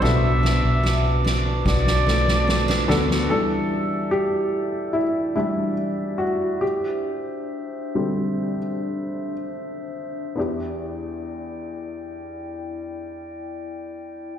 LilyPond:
<<
  \new Staff \with { instrumentName = "Flugelhorn" } { \time 4/4 \key e \minor \tempo 4 = 70 e''4. r8 d''4. r8 | r1 | r1 | r1 | }
  \new Staff \with { instrumentName = "Glass harmonica" } { \time 4/4 \key e \minor << { d'''1 | e''1~ | e''1 | <e' d'' g''>1 | } \\ { <b' a''>1 | <e' d''>1 | <d' c''>1 | r1 | } >> }
  \new Staff \with { instrumentName = "Grand piano" } { \time 4/4 \key e \minor <b d' fis' a'>2 r4. <b d' fis' a'>8 | a'4 g'4 e'8 e'4 fis'8 | g'2. r4 | <b d' e' g'>1 | }
  \new Staff \with { instrumentName = "Grand piano" } { \clef bass \time 4/4 \key e \minor r1 | <e g d'>2~ <e g d'>8 <e g d'>8 r4 | r4. <d g c'>8 r2 | e,1 | }
  \new Staff \with { instrumentName = "Steel-string acoustic guitar" } { \time 4/4 \key e \minor b,8 d'8 fis'8 d'8 fis'8 a8 c'16 d'16 a8 | r1 | r1 | r1 | }
  \new Staff \with { instrumentName = "Fingered electric bass" } { \clef bass \time 4/4 \key e \minor b,,8. b,,4~ b,,16 b,,4. d,8 | r1 | r1 | r1 | }
  \new DrumStaff \with { instrumentName = "Drums" } \drummode { \time 4/4 sn8 sn8 sn8 sn8 <bd sn>16 sn16 sn16 sn16 sn16 sn16 sn16 sn16 | r4 r4 r4 r4 | r4 r4 r4 r4 | r4 r4 r4 r4 | }
>>